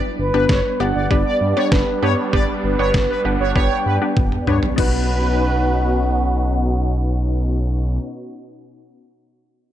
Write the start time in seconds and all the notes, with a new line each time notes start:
Already playing: G3 B3 D4 G4 B4
0.19 G1 B4
0.34 G1 B3 D4 G4 B4
0.49 G1 C#5, kick, snare
0.80 G1 B3 D4 G4 D5 F#5
0.95 G1 D5
1.11 G1 B3 D4 G4 B4 D5, kick
1.26 D5
1.41 G2
1.56 B3 D4 G4 C#5 D5
1.72 G1 B4, kick, snare
2.02 G2 B3 D4 G4 B4 C#5
2.33 G1 B3 D4 G4 B4 D5, kick
2.64 G1 B4
2.79 G1 B3 D4 G4 C#5
2.94 G1, kick, snare
3.10 B4
3.25 G1 B3 D4 G4 B4 F#5
3.40 G1 C#5
3.55 G1 B3 D4 G4 B4 C#5 G5, kick
3.86 G2 B4
4.02 B3 D4 G4 B4
4.17 G1, kick, high tom
4.32 mid tom
4.47 G2 B3 D4 G4 B4 C#5, mid tom
4.63 floor tom
4.76 B1 B2 B3 C#4 D#4 F#4 B4 F#5, kick, crash